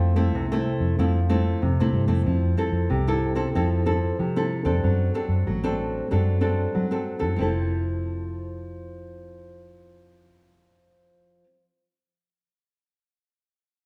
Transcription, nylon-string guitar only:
Already playing: F3 A3 C4 E4
0.16 A3 C4 E4
0.35 C3
0.52 A3 C4 E4
0.99 F3 A3 C4 E4
1.29 A3 C4 E4
1.62 C3
1.80 A3 C4 E4
2.08 A3 C4 E4
2.26 F3
2.57 C4 E4 A4
2.90 C3
3.07 C4 E4 A4
3.35 C4 E4 A4
3.55 F3 C4 E4 A4
3.86 C4 E4 A4
4.19 C3
4.36 C4 E4 A4
4.65 C4 D4 A4
4.84 F#3
5.14 C4 D4 A4
5.47 F#3
5.64 C4 D4 A4
6.11 F#3 C4 D4 A4
6.41 C4 D4 A4
6.75 F#3
6.91 C4 D4 A4
7.19 C4 E4 A4
7.36 F3 C4
7.40 E4 A4

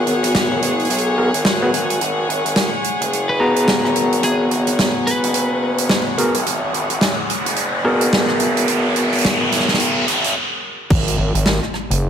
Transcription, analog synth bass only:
0.06 G#1
0.51 G#1
0.62 F#1
0.90 B1
1.34 G#1
1.73 G#1
2.01 G#1
2.29 G#1
2.45 G#1
3.01 F#1
3.84 G#1
4.23 G#1
4.51 G#1
5.24 F#1
6.35 B1
6.46 G#1
6.73 G#1
6.90 G#1
7.45 F#1
8.29 G#1
8.68 G#1
8.96 G#1
9.40 G#1
9.68 B1
10.07 G#1
10.90 G#1
11.18 G#1
11.35 G#1
11.90 F#1

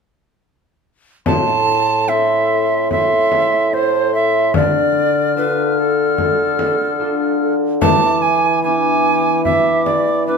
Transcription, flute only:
1.26 C6
2.09 C6
2.92 C6
3.73 C6
4.55 F6
7.82 D6
8.65 D6
9.45 D6
10.28 D6

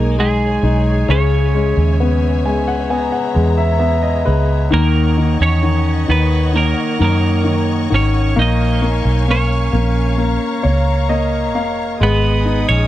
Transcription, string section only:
Already playing: G#4 C#5 G#5
1.09 E5
2.90 A#5
4.71 C#5 D#5 F#5 C#6
8.36 F5 G#5
10.16 A#5
11.99 G#4 D#5 G#5 D#6

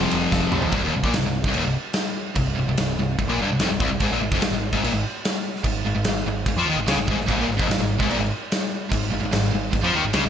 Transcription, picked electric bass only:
0.13 F1
0.32 F1
0.52 A#1
0.72 C1
0.83 D#1
0.93 C1
1.03 A#1
1.14 C1
1.24 C1
1.44 C1
1.55 D#1
1.65 C1
2.36 C1
2.57 C1
2.66 C1
2.78 C1
2.98 C1
3.19 C1
3.28 A#1
3.38 G1
3.48 C1
3.59 F1
3.69 C1
3.80 C1
3.90 C1
4.00 G#1
4.12 A#1
4.20 G#1
4.31 F1
4.41 G#1
4.51 G#1
4.73 G#1
4.83 A#1
4.92 G#1
5.64 G#1
5.85 G#1
5.95 G#1
6.06 G#1
6.26 G#1
6.46 G#1
6.57 F2
6.66 D#2
6.76 G#1
6.87 C#2
6.96 G#1
7.08 G#1
7.16 G#1
7.28 G#1
7.37 A#1
7.47 G#1
7.59 F1
7.68 G#1
7.78 G#1
8.00 G#1
8.09 A#1
8.20 G#1
8.91 G#1
9.13 G#1
9.23 G#1
9.33 G#1
9.54 G#1
9.72 G#1
9.84 F2
9.93 D#2
10.03 G#1
10.14 C#2
10.25 G#1

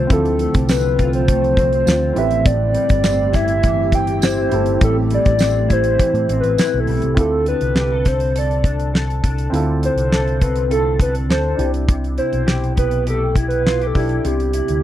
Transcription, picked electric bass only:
0.10 D2
0.54 C2
1.87 D2
2.16 A1
2.90 G1
4.52 G1
4.82 A1
5.26 A1
6.14 A2
6.29 A1
6.44 A1
6.74 B1
6.88 B1
7.03 C2
7.17 D2
7.62 C2
9.23 C2
9.52 D2
9.96 C2
11.29 D2
11.59 C2
12.33 B1
13.95 B1
14.25 C2
14.69 D2

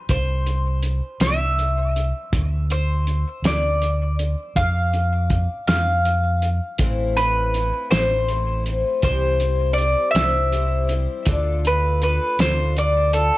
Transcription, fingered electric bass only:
0.09 C2
1.20 C2
2.32 D2
3.42 D2
4.55 F2
5.68 F2
6.79 A1
7.91 A1
9.03 C2
10.15 C2
11.27 D2
12.39 D2

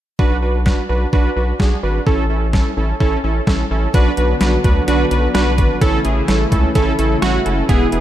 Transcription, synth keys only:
0.19 D4 F#4 B4
0.42 D4 F#4 B4
0.66 D4 F#4 B4
0.89 D4 F#4 B4
1.13 D4 F#4 B4
1.36 D4 F#4 B4
1.60 D4 F#4 G#4
1.83 D4 F#4 B4
2.07 C#4 E4 A4
2.30 C#4 E4 A4
2.53 C#4 E4 A4
2.77 C#4 E4 A4
3.00 C#4 E4 A4
3.24 C#4 E4 A4
3.47 C#4 E4 A4
3.71 C#4 E4 A4
3.94 D4 F#4 B4
4.18 D4 F#4 B4
4.41 D4 F#4 B4
4.64 D4 F#4 B4
4.88 D4 F#4 B4
5.11 D4 F#4 B4
5.34 D4 F#4 B4
5.58 D4 F#4 B4
5.81 C#4 E4 A4
6.05 C#4 E4 G#4
6.28 C#4 E4 A4
6.52 C#4 E4 A4
6.75 C#4 E4 A4
6.99 C#4 E4 A4
7.22 C#4 E4 F#4
7.45 C#4 E4 A4
7.69 B3 E4 G#4
7.93 B3 E4 G#4

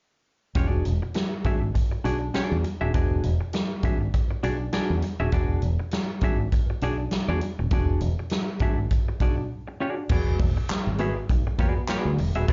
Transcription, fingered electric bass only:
0.55 E1
0.85 E1
1.45 G#1
2.05 B1
2.51 E2
2.81 D#1
2.94 E1
3.24 E1
3.83 G#1
4.43 B1
4.90 E2
5.19 D#1
5.32 E1
5.63 E1
6.21 G#1
6.82 B1
7.28 E2
7.59 D#1
7.71 E1
8.01 E1
8.60 G#1
9.20 B1
10.10 E1
10.39 E1
10.69 muted fingered electric bass stroke
10.87 G#1
11.29 B1
11.58 E2
12.05 D2
12.18 E1
12.35 D#1
12.48 E1

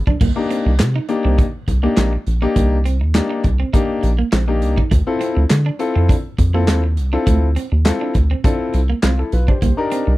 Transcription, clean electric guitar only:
0.07 D4
0.21 A#3
0.51 C4
0.67 muted clean electric guitar stroke
0.96 D#4
1.09 muted clean electric guitar stroke
1.25 C4
1.39 D#4
1.68 muted clean electric guitar stroke
1.83 A#3
1.97 C4
2.13 muted clean electric guitar stroke
2.42 D#4
2.56 A#3
2.85 C4
3.01 muted clean electric guitar stroke
3.30 D#4
3.44 muted clean electric guitar stroke
3.60 C4
3.73 D#4
4.03 muted clean electric guitar stroke
4.19 A#3
4.32 C4
4.48 muted clean electric guitar stroke
4.77 D#4
4.91 A3
5.21 C4
5.37 muted clean electric guitar stroke
5.66 D4
5.80 muted clean electric guitar stroke
5.95 C4
6.09 D4
6.39 muted clean electric guitar stroke
6.54 A#3
6.68 C4
6.84 muted clean electric guitar stroke
7.13 D4
7.27 A3
7.56 C4
7.72 muted clean electric guitar stroke
8.01 D4
8.15 muted clean electric guitar stroke
8.31 C4
8.45 D4
8.74 muted clean electric guitar stroke
8.90 A#3
9.03 C4
9.19 muted clean electric guitar stroke
9.48 D4
9.62 A#3
9.92 C4
10.07 muted clean electric guitar stroke

